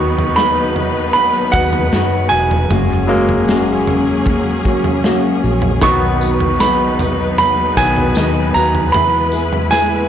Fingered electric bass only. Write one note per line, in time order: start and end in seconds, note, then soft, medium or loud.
0.00 1.50 D#2 medium
1.54 1.90 D#2 medium
1.93 2.29 F#2 medium
2.32 2.68 E1 medium
2.70 4.66 F#1 medium
4.66 5.40 C#2 medium
5.44 5.80 A#1 medium
5.83 7.73 B1 medium
7.77 8.14 B1 medium
8.17 8.53 D#2 medium
8.55 8.92 D#2 medium
8.95 10.09 E2 medium